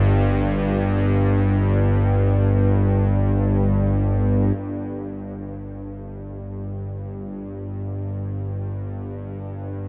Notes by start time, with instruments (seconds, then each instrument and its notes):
Already playing: synth drone G1 G2, ambient pad G3 D4 G4 G5
4.56 synth drone G1 G2